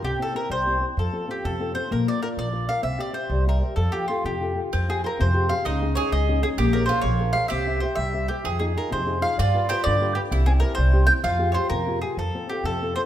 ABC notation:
X:1
M:6/8
L:1/16
Q:3/8=129
K:F
V:1 name="Mandolin"
G2 A2 B2 c4- c/2 z3/2 | A4 G2 A4 c2 | B2 d2 B2 d4 f2 | e2 d2 c4 B4 |
A2 G2 F2 G4- G/2 z3/2 | [K:Fm] z2 A3/2 c/2 B2 c4 f2 | e4 d2 e4 A2 | z2 B2 c2 d4 f2 |
=e4 c2 e4 G2 | z2 A2 B2 c4 f2 | =d4 c2 d4 G2 | z2 A2 B2 c4 g2 |
f3- f/2 d/2 c2 B4 A2 | [K:F] A4 G2 A4 c2 |]
V:2 name="Nylon-string guitar"
C,2 [CEG]2 [CEG]2 G,2 [CEG]2 [CEG]2 | F,2 [CFA]2 [CFA]2 C,2 [CFA]2 [CFA]2 | B,2 [FBd]2 [FBd]2 F,2 [FBd]2 [FBd]2 | C2 [Gce]2 [Gce]2 G,2 [Gce]2 [Gce]2 |
F,2 [FGA]2 [FGA]2 C,2 [FGA]2 [FGA]2 | [K:Fm] F,2 [FGA]2 [FGA]2 C,2 [FGA]2 [FGA]2 | D,2 [DEA]2 [DEA]2 A,2 [DEA]2 [DEA]2 | B,2 [ABd]2 [ABd]2 F,2 [ABd]2 [ABd]2 |
C2 [Gc=e]2 [Gce]2 G,2 [Gce]2 [Gce]2 | F,2 [EFA]2 [EFA]2 C,2 [EFA]2 [EFA]2 | G,2 [FG=B]2 [FGB]2 =D,2 [FGB]2 [FGB]2 | C,2 [C=EG]2 [CEG]2 G,2 [CEG]2 [CE]2 |
F,2 [FGA]2 [FGA]2 C,2 [FGA]2 [FGA]2 | [K:F] F,2 [CFA]2 [CFA]2 C,2 [CFA]2 [CFA]2 |]
V:3 name="Mandolin"
z12 | z12 | z12 | z12 |
z12 | [K:Fm] C12 | E4 A8 | G4 F8 |
G8- G2 z2 | A12 | F4 G8 | =E12 |
F8- F2 z2 | [K:F] z12 |]
V:4 name="Upright bass" clef=bass
C,,2 z4 C,,6 | F,,2 z4 F,,6 | B,,,2 z4 B,,,6 | C,,2 z4 C,,6 |
F,,2 z4 F,,6 | [K:Fm] F,,6 F,,6 | D,,6 D,,6 | B,,,6 B,,,6 |
C,,6 C,,6 | F,,6 F,,6 | G,,6 G,,6 | C,,6 C,,6 |
F,,6 F,,6 | [K:F] F,,2 z4 F,,6 |]